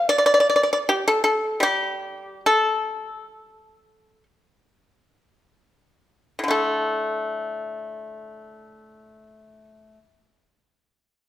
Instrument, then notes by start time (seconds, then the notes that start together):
pipa
0.09 D5
0.18 D5
0.26 D5
0.34 D5
0.40 D5
0.50 D5
0.56 D5
0.63 D5
0.73 D5
0.89 G4
1.08 A4
1.24 A4
1.60 G3 G4
2.46 A4
6.39 A2
6.44 D3
6.48 A3 A4